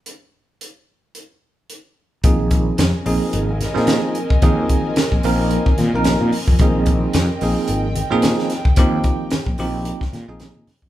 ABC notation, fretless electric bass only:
X:1
M:4/4
L:1/16
Q:"Swing 16ths" 1/4=110
K:Cm
V:1 name="Fretless electric bass" clef=bass
z16 | B,,, B,,,3 F,, z B,,, z A,,,3 B,,2 z3 | E,,2 z3 B,,, B,,,3 z B,, B,,,2 B,, z F,, | B,,, B,,,3 F,, z B,,, z A,,,3 B,,2 z3 |
E,,2 z3 B,,, B,,,3 z B,, B,,,2 B,, z F,, |]